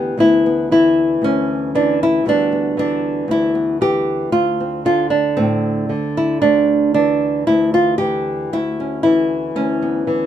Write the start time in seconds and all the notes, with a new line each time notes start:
Already playing: D2 E3 B3 G4
0.18 D2 E3 B3 E4
0.46 B3
0.71 E3 E4
1.22 D2 C#4
1.75 E3 D4
2.03 E4
2.25 D2 E3 G3 B3 D4
2.52 B3
2.77 E3 D4
3.28 D2 E4
3.55 B3
3.81 E3 G4
4.32 D2 F4
4.60 C4
4.85 D3 F4
5.10 D4
5.37 A2 C4
5.89 D3
6.17 E4
6.42 D2 D4
6.94 E3 D4
7.47 D2 E4
7.74 F4
7.98 E3 G4
8.53 D2 E4
8.80 C#4
9.03 E3 E4
9.56 D2 C#4
9.82 B3
10.07 E3